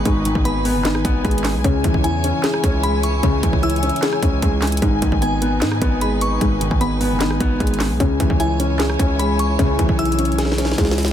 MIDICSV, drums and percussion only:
0, 0, Header, 1, 2, 480
1, 0, Start_track
1, 0, Tempo, 397351
1, 65, Time_signature, 4, 2, 24, 8
1, 13441, End_track
2, 0, Start_track
2, 0, Title_t, "Drums"
2, 66, Note_on_c, 9, 36, 107
2, 66, Note_on_c, 9, 42, 69
2, 186, Note_off_c, 9, 42, 0
2, 187, Note_off_c, 9, 36, 0
2, 306, Note_on_c, 9, 42, 94
2, 426, Note_off_c, 9, 42, 0
2, 427, Note_on_c, 9, 36, 104
2, 546, Note_on_c, 9, 42, 70
2, 548, Note_off_c, 9, 36, 0
2, 667, Note_off_c, 9, 42, 0
2, 787, Note_on_c, 9, 46, 61
2, 907, Note_off_c, 9, 46, 0
2, 1022, Note_on_c, 9, 39, 90
2, 1027, Note_on_c, 9, 38, 115
2, 1027, Note_on_c, 9, 42, 79
2, 1143, Note_off_c, 9, 39, 0
2, 1146, Note_on_c, 9, 37, 96
2, 1148, Note_off_c, 9, 38, 0
2, 1148, Note_off_c, 9, 42, 0
2, 1265, Note_on_c, 9, 36, 103
2, 1266, Note_on_c, 9, 42, 81
2, 1267, Note_off_c, 9, 37, 0
2, 1386, Note_off_c, 9, 36, 0
2, 1387, Note_off_c, 9, 42, 0
2, 1505, Note_on_c, 9, 36, 97
2, 1505, Note_on_c, 9, 42, 62
2, 1586, Note_off_c, 9, 42, 0
2, 1586, Note_on_c, 9, 42, 62
2, 1626, Note_off_c, 9, 36, 0
2, 1666, Note_off_c, 9, 42, 0
2, 1666, Note_on_c, 9, 42, 63
2, 1741, Note_on_c, 9, 39, 78
2, 1746, Note_on_c, 9, 38, 102
2, 1746, Note_on_c, 9, 46, 63
2, 1787, Note_off_c, 9, 42, 0
2, 1862, Note_off_c, 9, 39, 0
2, 1867, Note_off_c, 9, 38, 0
2, 1867, Note_off_c, 9, 46, 0
2, 1986, Note_on_c, 9, 36, 106
2, 1986, Note_on_c, 9, 42, 70
2, 2107, Note_off_c, 9, 36, 0
2, 2107, Note_off_c, 9, 42, 0
2, 2225, Note_on_c, 9, 42, 91
2, 2226, Note_on_c, 9, 36, 95
2, 2346, Note_off_c, 9, 42, 0
2, 2347, Note_off_c, 9, 36, 0
2, 2347, Note_on_c, 9, 36, 102
2, 2466, Note_on_c, 9, 42, 71
2, 2468, Note_off_c, 9, 36, 0
2, 2587, Note_off_c, 9, 42, 0
2, 2706, Note_on_c, 9, 42, 79
2, 2826, Note_off_c, 9, 42, 0
2, 2940, Note_on_c, 9, 39, 93
2, 2945, Note_on_c, 9, 38, 112
2, 2945, Note_on_c, 9, 42, 82
2, 3060, Note_off_c, 9, 39, 0
2, 3064, Note_on_c, 9, 37, 97
2, 3066, Note_off_c, 9, 38, 0
2, 3066, Note_off_c, 9, 42, 0
2, 3185, Note_off_c, 9, 37, 0
2, 3185, Note_on_c, 9, 36, 104
2, 3185, Note_on_c, 9, 42, 87
2, 3305, Note_off_c, 9, 36, 0
2, 3306, Note_off_c, 9, 42, 0
2, 3425, Note_on_c, 9, 42, 76
2, 3546, Note_off_c, 9, 42, 0
2, 3665, Note_on_c, 9, 42, 78
2, 3786, Note_off_c, 9, 42, 0
2, 3904, Note_on_c, 9, 42, 68
2, 3905, Note_on_c, 9, 36, 109
2, 4025, Note_off_c, 9, 42, 0
2, 4026, Note_off_c, 9, 36, 0
2, 4145, Note_on_c, 9, 36, 96
2, 4145, Note_on_c, 9, 42, 94
2, 4266, Note_off_c, 9, 36, 0
2, 4266, Note_off_c, 9, 42, 0
2, 4266, Note_on_c, 9, 36, 101
2, 4385, Note_on_c, 9, 42, 60
2, 4387, Note_off_c, 9, 36, 0
2, 4465, Note_off_c, 9, 42, 0
2, 4465, Note_on_c, 9, 42, 61
2, 4546, Note_off_c, 9, 42, 0
2, 4546, Note_on_c, 9, 42, 63
2, 4625, Note_off_c, 9, 42, 0
2, 4625, Note_on_c, 9, 42, 80
2, 4705, Note_off_c, 9, 42, 0
2, 4705, Note_on_c, 9, 42, 63
2, 4785, Note_off_c, 9, 42, 0
2, 4785, Note_on_c, 9, 42, 47
2, 4859, Note_on_c, 9, 39, 91
2, 4864, Note_off_c, 9, 42, 0
2, 4864, Note_on_c, 9, 38, 120
2, 4864, Note_on_c, 9, 42, 81
2, 4980, Note_off_c, 9, 39, 0
2, 4984, Note_on_c, 9, 37, 96
2, 4985, Note_off_c, 9, 38, 0
2, 4985, Note_off_c, 9, 42, 0
2, 5104, Note_on_c, 9, 36, 101
2, 5104, Note_on_c, 9, 42, 79
2, 5105, Note_off_c, 9, 37, 0
2, 5225, Note_off_c, 9, 36, 0
2, 5225, Note_off_c, 9, 42, 0
2, 5344, Note_on_c, 9, 42, 77
2, 5345, Note_on_c, 9, 36, 96
2, 5465, Note_off_c, 9, 36, 0
2, 5465, Note_off_c, 9, 42, 0
2, 5579, Note_on_c, 9, 39, 80
2, 5585, Note_on_c, 9, 38, 98
2, 5585, Note_on_c, 9, 42, 51
2, 5585, Note_on_c, 9, 46, 62
2, 5645, Note_off_c, 9, 42, 0
2, 5645, Note_on_c, 9, 42, 64
2, 5700, Note_off_c, 9, 39, 0
2, 5705, Note_off_c, 9, 38, 0
2, 5705, Note_off_c, 9, 42, 0
2, 5705, Note_off_c, 9, 46, 0
2, 5705, Note_on_c, 9, 42, 73
2, 5765, Note_off_c, 9, 42, 0
2, 5765, Note_on_c, 9, 42, 81
2, 5825, Note_off_c, 9, 42, 0
2, 5825, Note_on_c, 9, 42, 71
2, 5826, Note_on_c, 9, 36, 107
2, 5946, Note_off_c, 9, 36, 0
2, 5946, Note_off_c, 9, 42, 0
2, 6065, Note_on_c, 9, 42, 99
2, 6066, Note_on_c, 9, 36, 98
2, 6186, Note_off_c, 9, 42, 0
2, 6187, Note_off_c, 9, 36, 0
2, 6187, Note_on_c, 9, 36, 102
2, 6305, Note_on_c, 9, 42, 72
2, 6307, Note_off_c, 9, 36, 0
2, 6426, Note_off_c, 9, 42, 0
2, 6545, Note_on_c, 9, 42, 77
2, 6666, Note_off_c, 9, 42, 0
2, 6781, Note_on_c, 9, 39, 94
2, 6786, Note_on_c, 9, 38, 114
2, 6786, Note_on_c, 9, 42, 79
2, 6901, Note_off_c, 9, 39, 0
2, 6904, Note_on_c, 9, 37, 99
2, 6906, Note_off_c, 9, 38, 0
2, 6907, Note_off_c, 9, 42, 0
2, 7025, Note_off_c, 9, 37, 0
2, 7025, Note_on_c, 9, 36, 105
2, 7025, Note_on_c, 9, 42, 84
2, 7146, Note_off_c, 9, 36, 0
2, 7146, Note_off_c, 9, 42, 0
2, 7265, Note_on_c, 9, 42, 76
2, 7386, Note_off_c, 9, 42, 0
2, 7506, Note_on_c, 9, 42, 80
2, 7627, Note_off_c, 9, 42, 0
2, 7746, Note_on_c, 9, 36, 103
2, 7746, Note_on_c, 9, 42, 70
2, 7866, Note_off_c, 9, 42, 0
2, 7867, Note_off_c, 9, 36, 0
2, 7986, Note_on_c, 9, 42, 93
2, 8107, Note_off_c, 9, 42, 0
2, 8107, Note_on_c, 9, 36, 104
2, 8225, Note_on_c, 9, 42, 72
2, 8228, Note_off_c, 9, 36, 0
2, 8346, Note_off_c, 9, 42, 0
2, 8465, Note_on_c, 9, 46, 59
2, 8586, Note_off_c, 9, 46, 0
2, 8699, Note_on_c, 9, 39, 90
2, 8704, Note_on_c, 9, 38, 119
2, 8705, Note_on_c, 9, 42, 79
2, 8820, Note_off_c, 9, 39, 0
2, 8825, Note_off_c, 9, 38, 0
2, 8825, Note_off_c, 9, 42, 0
2, 8825, Note_on_c, 9, 37, 93
2, 8945, Note_off_c, 9, 37, 0
2, 8945, Note_on_c, 9, 36, 107
2, 8945, Note_on_c, 9, 42, 83
2, 9065, Note_off_c, 9, 36, 0
2, 9065, Note_off_c, 9, 42, 0
2, 9185, Note_on_c, 9, 36, 95
2, 9185, Note_on_c, 9, 42, 63
2, 9265, Note_off_c, 9, 42, 0
2, 9265, Note_on_c, 9, 42, 64
2, 9306, Note_off_c, 9, 36, 0
2, 9346, Note_off_c, 9, 42, 0
2, 9346, Note_on_c, 9, 42, 62
2, 9420, Note_on_c, 9, 39, 78
2, 9425, Note_on_c, 9, 38, 99
2, 9425, Note_on_c, 9, 46, 63
2, 9466, Note_off_c, 9, 42, 0
2, 9541, Note_off_c, 9, 39, 0
2, 9546, Note_off_c, 9, 38, 0
2, 9546, Note_off_c, 9, 46, 0
2, 9666, Note_on_c, 9, 36, 106
2, 9666, Note_on_c, 9, 42, 72
2, 9786, Note_off_c, 9, 36, 0
2, 9787, Note_off_c, 9, 42, 0
2, 9906, Note_on_c, 9, 36, 97
2, 9906, Note_on_c, 9, 42, 93
2, 10027, Note_off_c, 9, 36, 0
2, 10027, Note_off_c, 9, 42, 0
2, 10027, Note_on_c, 9, 36, 103
2, 10146, Note_on_c, 9, 42, 71
2, 10148, Note_off_c, 9, 36, 0
2, 10267, Note_off_c, 9, 42, 0
2, 10386, Note_on_c, 9, 42, 78
2, 10507, Note_off_c, 9, 42, 0
2, 10621, Note_on_c, 9, 39, 96
2, 10626, Note_on_c, 9, 38, 119
2, 10626, Note_on_c, 9, 42, 82
2, 10742, Note_off_c, 9, 39, 0
2, 10746, Note_on_c, 9, 37, 99
2, 10747, Note_off_c, 9, 38, 0
2, 10747, Note_off_c, 9, 42, 0
2, 10865, Note_on_c, 9, 36, 101
2, 10867, Note_off_c, 9, 37, 0
2, 10867, Note_on_c, 9, 42, 86
2, 10986, Note_off_c, 9, 36, 0
2, 10987, Note_off_c, 9, 42, 0
2, 11107, Note_on_c, 9, 42, 73
2, 11228, Note_off_c, 9, 42, 0
2, 11346, Note_on_c, 9, 42, 80
2, 11467, Note_off_c, 9, 42, 0
2, 11586, Note_on_c, 9, 36, 105
2, 11586, Note_on_c, 9, 42, 71
2, 11707, Note_off_c, 9, 36, 0
2, 11707, Note_off_c, 9, 42, 0
2, 11826, Note_on_c, 9, 36, 96
2, 11826, Note_on_c, 9, 42, 95
2, 11947, Note_off_c, 9, 36, 0
2, 11947, Note_off_c, 9, 42, 0
2, 11947, Note_on_c, 9, 36, 102
2, 12066, Note_on_c, 9, 42, 58
2, 12068, Note_off_c, 9, 36, 0
2, 12146, Note_off_c, 9, 42, 0
2, 12146, Note_on_c, 9, 42, 60
2, 12225, Note_off_c, 9, 42, 0
2, 12225, Note_on_c, 9, 42, 61
2, 12305, Note_off_c, 9, 42, 0
2, 12305, Note_on_c, 9, 42, 79
2, 12385, Note_off_c, 9, 42, 0
2, 12385, Note_on_c, 9, 42, 60
2, 12465, Note_off_c, 9, 42, 0
2, 12465, Note_on_c, 9, 42, 45
2, 12545, Note_off_c, 9, 42, 0
2, 12545, Note_on_c, 9, 38, 62
2, 12545, Note_on_c, 9, 42, 78
2, 12625, Note_off_c, 9, 38, 0
2, 12625, Note_on_c, 9, 38, 56
2, 12666, Note_off_c, 9, 42, 0
2, 12705, Note_off_c, 9, 38, 0
2, 12705, Note_on_c, 9, 38, 72
2, 12785, Note_off_c, 9, 38, 0
2, 12785, Note_on_c, 9, 38, 65
2, 12785, Note_on_c, 9, 42, 81
2, 12865, Note_off_c, 9, 38, 0
2, 12865, Note_on_c, 9, 38, 81
2, 12906, Note_off_c, 9, 42, 0
2, 12945, Note_off_c, 9, 38, 0
2, 12945, Note_on_c, 9, 38, 73
2, 13024, Note_on_c, 9, 36, 95
2, 13025, Note_off_c, 9, 38, 0
2, 13025, Note_on_c, 9, 38, 90
2, 13025, Note_on_c, 9, 42, 75
2, 13105, Note_off_c, 9, 38, 0
2, 13105, Note_on_c, 9, 38, 83
2, 13145, Note_off_c, 9, 36, 0
2, 13145, Note_off_c, 9, 42, 0
2, 13184, Note_off_c, 9, 38, 0
2, 13184, Note_on_c, 9, 38, 102
2, 13264, Note_off_c, 9, 38, 0
2, 13264, Note_on_c, 9, 38, 89
2, 13264, Note_on_c, 9, 42, 50
2, 13264, Note_on_c, 9, 46, 63
2, 13324, Note_off_c, 9, 42, 0
2, 13324, Note_on_c, 9, 42, 61
2, 13344, Note_off_c, 9, 38, 0
2, 13344, Note_on_c, 9, 38, 112
2, 13384, Note_off_c, 9, 42, 0
2, 13384, Note_on_c, 9, 42, 71
2, 13385, Note_off_c, 9, 46, 0
2, 13441, Note_off_c, 9, 38, 0
2, 13441, Note_off_c, 9, 42, 0
2, 13441, End_track
0, 0, End_of_file